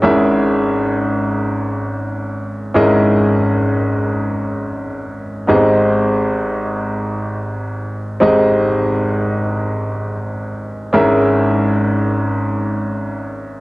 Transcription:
0.02 G#1 G#2 C#4 E4 G#4 A#4 E5
2.74 G#1 G#2 C#4 E4 G#4 A#4 D#5
5.47 G#1 G#2 B3 D#4 G4 G#4 D#5
5.54 C4
8.20 G#1 G#2 C4 D#4 G4 G#4 D#5
10.93 G#1 G#2 C#4 E4 G#4 A#4 E5

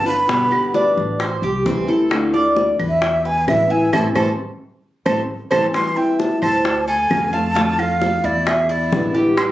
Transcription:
Already playing: G1
0.05 D3 B3 D4 F4 B4 B5
0.27 B2 D3 G3 B3 G4, high bongo
0.50 D3 G3 B3 G4, high bongo, claves
0.74 D4, high bongo
0.97 A1, high bongo
1.19 C5, muted nylon-string guitar stroke, high bongo, claves
1.42 C2 G4, high bongo
1.65 D2 E3 G3 C4 E4, high bongo, low bongo
1.87 G3 C4 E4 A4
2.10 D3 A3 D4 F4, high bongo, claves
2.33 A3 D4 F4 D5, high bongo
2.56 high bongo
2.79 E2 B4, high bongo, claves
2.89 E5
3.02 E5, muted nylon-string guitar stroke, high bongo
3.25 B4 G#5, high bongo
3.47 A1 E3 G#3 B3 E4 E5, high bongo, low bongo, claves
3.70 E3 G#3 B3 E4 E5 G#5
3.93 A1 E3 A3 C4 E4 A4 C5 A5, low bongo, claves
4.15 A1 E3 A3 C4 E4 A4 C5 A5, low bongo, claves
5.06 A1 E3 A3 C4 E4 A4 C5 A5, low bongo, claves
5.51 A1 E3 A3 C4 E4 A4 C5 A5, low bongo, claves
5.73 E3 G3 C4 E4 C6, high bongo, claves
5.96 G3 C4 E4 E5 G5
6.19 A5, high bongo
6.42 D2 C5 A5, high bongo, claves
6.64 muted nylon-string guitar stroke, high bongo
6.88 A4 G#5, high bongo
7.10 F2 D3 A3 C4 F4, high bongo, low bongo, claves
7.33 A3 C4 F4 F5 A5, high bongo
7.55 D3 A3 C4 F4, high bongo
7.78 A3 C4 F4 F5, claves
8.02 A4, high bongo
8.24 E2 E4 D5, high bongo
8.47 G#4 E5, muted nylon-string guitar stroke, high bongo, claves
8.69 E4 D5, high bongo
8.92 A1 D3 G#3 B3 E4, high bongo, low bongo
9.14 D3 G#3 B3 E4 G4, high bongo
9.37 E3 G3 C4 E4 C6, high bongo, claves

